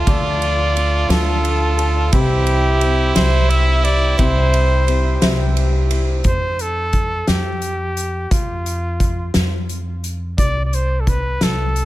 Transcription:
0.00 0.07 D2 medium
0.00 0.07 D3 medium
0.00 0.07 F3 medium
0.00 0.07 A3 medium
0.00 0.07 D4 medium
0.00 2.09 F4 medium
0.00 2.14 F4 loud
0.00 0.08 A4 medium
0.00 2.09 A4 medium
0.00 0.08 D5 medium
0.00 2.09 D5 medium
0.00 2.09 A5 medium
0.07 1.06 D2 medium
0.07 2.09 D2 medium
0.07 2.09 D3 medium
0.07 0.76 D3 medium
0.07 0.82 F3 medium
0.07 0.82 A3 medium
0.07 0.75 A3 medium
0.07 0.82 D4 medium
0.07 0.76 D4 medium
0.07 0.76 F4 medium
0.07 0.82 A4 medium
0.07 0.77 A4 medium
0.07 1.12 D5 medium
0.07 0.82 D5 medium
0.07 kick loud
0.07 ride medium
0.42 ride medium
0.76 1.10 A3 medium
0.76 1.10 D4 medium
0.76 1.10 F4 medium
0.76 1.09 A4 medium
0.76 ride medium
1.09 2.08 D2 loud
1.09 1.80 D3 medium
1.09 1.85 F3 medium
1.09 1.85 A3 medium
1.09 1.79 A3 medium
1.09 1.79 D4 medium
1.09 1.85 D4 medium
1.09 1.78 F4 medium
1.09 1.76 A4 medium
1.09 2.13 A4 medium
1.09 1.85 A4 medium
1.09 1.85 D5 medium
1.09 snare loud
1.09 ride medium
1.45 ride medium
1.77 2.14 D4 soft
1.77 2.13 F4 medium
1.77 2.12 A4 medium
1.77 ride medium
2.12 3.12 C2 loud
2.12 4.15 C2 medium
2.12 2.82 C3 medium
2.12 4.15 C3 medium
2.12 2.82 E3 medium
2.12 2.88 G3 medium
2.12 2.81 G3 medium
2.12 2.88 C4 medium
2.12 2.82 C4 medium
2.12 6.21 E4 medium
2.12 5.91 E4 loud
2.12 2.88 E4 medium
2.12 2.82 E4 medium
2.12 6.21 G4 medium
2.12 3.12 G4 loud
2.12 4.16 C5 medium
2.12 2.88 C5 medium
2.12 2.83 C5 medium
2.12 2.88 E5 medium
2.12 6.21 G5 medium
2.12 kick loud
2.12 ride medium
2.47 ride medium
2.81 3.15 G3 medium
2.81 3.15 C4 medium
2.81 3.14 E4 medium
2.81 3.14 C5 medium
2.81 ride medium
3.15 4.15 C2 loud
3.15 3.85 C3 medium
3.15 3.85 E3 medium
3.15 3.91 G3 medium
3.15 3.86 G3 medium
3.15 3.91 C4 medium
3.15 3.85 C4 medium
3.15 3.83 E4 medium
3.15 3.91 E4 medium
3.15 3.83 C5 medium
3.15 3.51 C5 loud
3.15 3.91 C5 medium
3.15 3.91 E5 medium
3.15 snare loud
3.15 ride medium
3.49 3.86 E5 loud
3.49 ride medium
3.83 4.17 G3 soft
3.83 4.18 C4 soft
3.83 4.17 E4 medium
3.83 4.18 C5 medium
3.83 4.18 D5 loud
3.83 ride medium
4.18 5.18 C2 loud
4.18 6.22 C2 medium
4.18 4.87 C3 medium
4.18 6.22 C3 medium
4.18 4.87 E3 medium
4.18 4.85 G3 medium
4.18 4.94 G3 medium
4.18 4.86 C4 medium
4.18 4.94 C4 medium
4.18 4.87 E4 medium
4.18 4.94 E4 medium
4.18 6.23 C5 medium
4.18 5.52 C5 loud
4.18 4.88 C5 loud
4.18 4.94 C5 medium
4.18 4.95 E5 medium
4.18 kick loud
4.18 ride medium
4.54 ride medium
4.87 5.21 G3 medium
4.87 5.21 C4 medium
4.87 5.20 E4 medium
4.87 5.20 C5 medium
4.87 ride medium
5.21 6.21 C2 medium
5.21 5.92 C3 medium
5.21 5.91 E3 medium
5.21 5.97 G3 medium
5.21 5.91 G3 medium
5.21 5.91 C4 medium
5.21 5.97 C4 medium
5.21 5.89 E4 medium
5.21 5.97 E4 medium
5.21 5.89 C5 medium
5.21 5.97 C5 medium
5.21 5.97 E5 medium
5.21 snare loud
5.21 ride medium
5.57 ride medium
5.90 6.26 G3 soft
5.90 6.26 C4 medium
5.90 6.25 E4 medium
5.90 6.25 C5 medium
5.90 ride medium
6.24 7.24 F2 medium
6.24 6.63 C5 medium
6.24 kick medium
6.24 closed hi-hat medium
6.59 7.30 A4 medium
6.59 closed hi-hat soft
6.93 kick medium
6.93 closed hi-hat soft
7.27 8.27 F2 medium
7.27 8.33 G4 medium
7.27 snare medium
7.27 closed hi-hat medium
7.62 closed hi-hat medium
7.97 closed hi-hat medium
8.31 9.31 F2 medium
8.31 9.35 F4 medium
8.31 kick loud
8.31 closed hi-hat medium
8.66 closed hi-hat medium
9.00 kick medium
9.00 closed hi-hat medium
9.34 10.34 F2 medium
9.34 snare loud
9.34 closed hi-hat medium
9.69 closed hi-hat soft
10.04 closed hi-hat medium
10.38 11.38 C2 medium
10.38 10.64 D5 loud
10.38 kick medium
10.38 closed hi-hat medium
10.66 10.76 D5 medium
10.73 11.02 C5 medium
10.73 closed hi-hat soft
11.01 11.10 A4 medium
11.07 11.45 B4 medium
11.07 kick medium
11.07 closed hi-hat soft
11.41 11.85 C2 medium
11.41 11.85 A4 medium
11.41 snare medium
11.41 closed hi-hat medium
11.76 closed hi-hat soft

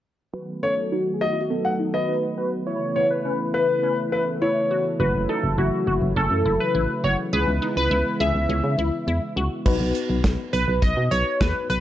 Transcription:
0.34 2.64 D#3 medium
0.34 2.65 F#3 medium
0.34 2.65 A3 medium
0.34 4.96 B3 medium
0.34 0.49 F#4 medium
0.34 2.65 F#4 medium
0.34 0.64 B4 medium
0.63 0.78 C#4 medium
0.63 0.93 A4 medium
0.63 0.72 C#5 medium
0.92 1.07 D#4 medium
0.92 1.14 F#4 medium
1.14 1.23 G#4 medium
1.21 1.37 F#4 medium
1.21 1.32 F#4 medium
1.21 1.40 D#5 medium
1.32 1.41 E4 medium
1.41 1.50 F#4 medium
1.50 1.66 B3 medium
1.50 1.95 A4 medium
1.65 1.74 F#5 medium
1.79 1.95 D#4 medium
1.94 2.35 B4 loud
1.94 2.13 D#5 medium
2.08 2.24 D#4 medium
2.38 2.53 F#4 medium
2.38 2.51 B4 medium
2.67 4.97 C#3 medium
2.67 9.62 E3 medium
2.67 7.29 A3 medium
2.67 2.82 E4 loud
2.67 4.98 E4 medium
2.67 3.12 C#5 loud
2.96 3.11 B3 medium
2.96 3.05 C#5 medium
3.10 3.53 B4 loud
3.25 3.40 C#4 medium
3.54 3.70 E4 medium
3.54 3.95 B4 medium
3.54 4.67 B4 medium
3.83 3.99 C#4 medium
4.12 4.28 E4 medium
4.12 4.22 B4 medium
4.42 4.57 E4 medium
4.42 4.83 C#5 medium
4.71 4.86 F#4 medium
5.00 5.12 F#1 loud
5.00 9.62 C#3 medium
5.00 7.30 F#3 medium
5.00 7.30 E4 medium
5.00 5.15 F#4 medium
5.00 5.30 B4 medium
5.14 5.27 F#1 medium
5.29 5.44 D#4 medium
5.29 5.56 A4 medium
5.43 5.56 F#1 loud
5.58 5.70 F#1 loud
5.58 5.73 E4 medium
5.58 6.12 F#4 medium
5.87 6.00 F#1 loud
5.87 6.03 F#4 medium
6.02 6.14 F#1 loud
6.16 6.29 F#1 loud
6.16 6.32 C#4 medium
6.16 6.62 A4 medium
6.31 6.43 F#2 medium
6.45 6.58 F#1 loud
6.45 6.61 E4 medium
6.60 7.05 B4 loud
6.75 6.87 A1 medium
6.75 6.90 E4 medium
7.04 7.16 F#1 medium
7.04 7.19 F#4 medium
7.04 7.17 C#5 medium
7.33 7.45 C#2 loud
7.33 9.64 G#3 medium
7.33 9.64 B3 medium
7.33 9.64 E4 medium
7.33 7.48 G#4 medium
7.33 7.74 B4 loud
7.48 7.60 C#2 medium
7.62 7.77 D#4 medium
7.77 7.89 C#2 medium
7.77 8.17 B4 loud
7.91 8.03 C#2 medium
7.91 8.07 E4 medium
8.20 8.33 C#2 loud
8.20 8.36 G#4 medium
8.20 9.33 E5 loud
8.35 8.47 C#2 medium
8.49 8.62 C#2 loud
8.49 8.65 C#4 medium
8.64 8.76 C#3 medium
8.78 8.91 C#2 medium
8.78 8.94 E4 medium
9.07 9.20 E2 medium
9.07 9.23 E4 medium
9.36 9.49 C#2 medium
9.36 9.52 F#4 medium
9.66 9.78 B1 loud
9.66 11.80 B3 medium
9.66 11.80 D#4 medium
9.66 11.80 F#4 medium
9.66 11.80 B4 medium
9.66 kick loud
9.66 crash medium
9.80 9.93 B1 loud
9.95 closed hi-hat medium
10.10 10.22 B1 medium
10.24 10.36 B1 loud
10.24 kick loud
10.24 snare loud
10.24 closed hi-hat medium
10.53 10.66 B1 loud
10.53 10.83 B4 medium
10.53 closed hi-hat medium
10.68 10.80 B1 loud
10.82 10.95 B1 loud
10.82 11.12 D#5 loud
10.82 kick loud
10.82 closed hi-hat medium
10.97 11.09 B2 loud
11.11 11.24 B1 loud
11.11 11.41 C#5 loud
11.11 closed hi-hat medium
11.41 11.53 D#2 medium
11.41 11.68 B4 medium
11.41 kick loud
11.41 snare loud
11.41 closed hi-hat medium
11.70 11.80 B1 loud
11.70 11.80 B4 medium
11.70 closed hi-hat medium

